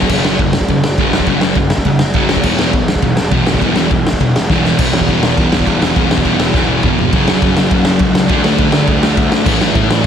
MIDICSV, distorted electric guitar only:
0, 0, Header, 1, 2, 480
1, 0, Start_track
1, 0, Tempo, 292683
1, 159, Time_signature, 4, 2, 24, 8
1, 16508, End_track
2, 0, Start_track
2, 0, Title_t, "Distorted electric guitar"
2, 0, Program_c, 0, 30
2, 163, Note_on_c, 0, 42, 94
2, 184, Note_on_c, 0, 54, 102
2, 187, Note_on_c, 0, 49, 101
2, 628, Note_off_c, 0, 42, 0
2, 638, Note_off_c, 0, 54, 0
2, 640, Note_off_c, 0, 49, 0
2, 663, Note_on_c, 0, 42, 82
2, 676, Note_on_c, 0, 49, 82
2, 868, Note_off_c, 0, 42, 0
2, 875, Note_off_c, 0, 49, 0
2, 1147, Note_on_c, 0, 42, 74
2, 1153, Note_on_c, 0, 49, 90
2, 1351, Note_off_c, 0, 42, 0
2, 1354, Note_off_c, 0, 49, 0
2, 1621, Note_on_c, 0, 42, 87
2, 1636, Note_on_c, 0, 49, 92
2, 1644, Note_on_c, 0, 54, 104
2, 2071, Note_off_c, 0, 42, 0
2, 2087, Note_off_c, 0, 49, 0
2, 2091, Note_off_c, 0, 54, 0
2, 2091, Note_on_c, 0, 42, 92
2, 2104, Note_on_c, 0, 49, 101
2, 2117, Note_on_c, 0, 54, 115
2, 2556, Note_off_c, 0, 42, 0
2, 2562, Note_off_c, 0, 49, 0
2, 2569, Note_off_c, 0, 54, 0
2, 2577, Note_on_c, 0, 42, 70
2, 2584, Note_on_c, 0, 49, 81
2, 2789, Note_off_c, 0, 42, 0
2, 2793, Note_off_c, 0, 49, 0
2, 3051, Note_on_c, 0, 42, 74
2, 3064, Note_on_c, 0, 49, 86
2, 3267, Note_off_c, 0, 42, 0
2, 3273, Note_off_c, 0, 49, 0
2, 3517, Note_on_c, 0, 42, 84
2, 3537, Note_on_c, 0, 49, 93
2, 3538, Note_on_c, 0, 54, 110
2, 3986, Note_off_c, 0, 42, 0
2, 3993, Note_on_c, 0, 40, 94
2, 3998, Note_off_c, 0, 49, 0
2, 4002, Note_off_c, 0, 54, 0
2, 4005, Note_on_c, 0, 47, 102
2, 4018, Note_on_c, 0, 52, 112
2, 4458, Note_off_c, 0, 40, 0
2, 4471, Note_off_c, 0, 47, 0
2, 4478, Note_on_c, 0, 40, 87
2, 4482, Note_off_c, 0, 52, 0
2, 4491, Note_on_c, 0, 47, 89
2, 4703, Note_off_c, 0, 40, 0
2, 4709, Note_off_c, 0, 47, 0
2, 4970, Note_on_c, 0, 47, 90
2, 4975, Note_on_c, 0, 40, 78
2, 5189, Note_off_c, 0, 47, 0
2, 5192, Note_off_c, 0, 40, 0
2, 5440, Note_on_c, 0, 40, 85
2, 5449, Note_on_c, 0, 47, 91
2, 5458, Note_on_c, 0, 52, 97
2, 5881, Note_off_c, 0, 40, 0
2, 5901, Note_off_c, 0, 47, 0
2, 5901, Note_on_c, 0, 40, 94
2, 5909, Note_off_c, 0, 52, 0
2, 5920, Note_on_c, 0, 47, 98
2, 5929, Note_on_c, 0, 52, 103
2, 6386, Note_off_c, 0, 40, 0
2, 6396, Note_off_c, 0, 47, 0
2, 6400, Note_off_c, 0, 52, 0
2, 6416, Note_on_c, 0, 40, 82
2, 6420, Note_on_c, 0, 47, 93
2, 6634, Note_off_c, 0, 40, 0
2, 6636, Note_off_c, 0, 47, 0
2, 6895, Note_on_c, 0, 40, 78
2, 6902, Note_on_c, 0, 47, 94
2, 7113, Note_off_c, 0, 40, 0
2, 7117, Note_off_c, 0, 47, 0
2, 7374, Note_on_c, 0, 40, 95
2, 7389, Note_on_c, 0, 47, 97
2, 7397, Note_on_c, 0, 52, 108
2, 7842, Note_off_c, 0, 40, 0
2, 7847, Note_off_c, 0, 47, 0
2, 7854, Note_off_c, 0, 52, 0
2, 7859, Note_on_c, 0, 40, 94
2, 7866, Note_on_c, 0, 47, 105
2, 7878, Note_on_c, 0, 52, 102
2, 8332, Note_off_c, 0, 52, 0
2, 8337, Note_off_c, 0, 47, 0
2, 8338, Note_on_c, 0, 52, 115
2, 8349, Note_off_c, 0, 40, 0
2, 8355, Note_on_c, 0, 40, 95
2, 8357, Note_on_c, 0, 47, 98
2, 8807, Note_off_c, 0, 40, 0
2, 8827, Note_off_c, 0, 47, 0
2, 8827, Note_on_c, 0, 40, 90
2, 8829, Note_off_c, 0, 52, 0
2, 8846, Note_on_c, 0, 47, 103
2, 8849, Note_on_c, 0, 52, 116
2, 9267, Note_off_c, 0, 52, 0
2, 9285, Note_off_c, 0, 47, 0
2, 9286, Note_on_c, 0, 52, 100
2, 9298, Note_off_c, 0, 40, 0
2, 9305, Note_on_c, 0, 47, 89
2, 9317, Note_on_c, 0, 40, 93
2, 9759, Note_off_c, 0, 40, 0
2, 9772, Note_off_c, 0, 47, 0
2, 9779, Note_on_c, 0, 40, 98
2, 9787, Note_off_c, 0, 52, 0
2, 9791, Note_on_c, 0, 47, 104
2, 9806, Note_on_c, 0, 52, 105
2, 10229, Note_off_c, 0, 52, 0
2, 10242, Note_off_c, 0, 47, 0
2, 10249, Note_on_c, 0, 52, 114
2, 10255, Note_off_c, 0, 40, 0
2, 10262, Note_on_c, 0, 47, 104
2, 10275, Note_on_c, 0, 40, 98
2, 10711, Note_off_c, 0, 40, 0
2, 10720, Note_off_c, 0, 47, 0
2, 10731, Note_on_c, 0, 40, 94
2, 10735, Note_off_c, 0, 52, 0
2, 10740, Note_on_c, 0, 47, 96
2, 10755, Note_on_c, 0, 52, 103
2, 11202, Note_off_c, 0, 52, 0
2, 11209, Note_off_c, 0, 47, 0
2, 11221, Note_off_c, 0, 40, 0
2, 11221, Note_on_c, 0, 52, 112
2, 11229, Note_on_c, 0, 47, 104
2, 11241, Note_on_c, 0, 40, 79
2, 11672, Note_off_c, 0, 40, 0
2, 11678, Note_on_c, 0, 42, 105
2, 11682, Note_off_c, 0, 52, 0
2, 11685, Note_off_c, 0, 47, 0
2, 11716, Note_on_c, 0, 49, 97
2, 11745, Note_on_c, 0, 54, 111
2, 13583, Note_off_c, 0, 42, 0
2, 13585, Note_off_c, 0, 49, 0
2, 13591, Note_on_c, 0, 50, 98
2, 13617, Note_off_c, 0, 54, 0
2, 13630, Note_on_c, 0, 57, 106
2, 13660, Note_on_c, 0, 62, 109
2, 15477, Note_off_c, 0, 50, 0
2, 15484, Note_on_c, 0, 45, 99
2, 15516, Note_off_c, 0, 57, 0
2, 15524, Note_on_c, 0, 52, 108
2, 15531, Note_off_c, 0, 62, 0
2, 15555, Note_on_c, 0, 57, 115
2, 16508, Note_off_c, 0, 45, 0
2, 16508, Note_off_c, 0, 52, 0
2, 16508, Note_off_c, 0, 57, 0
2, 16508, End_track
0, 0, End_of_file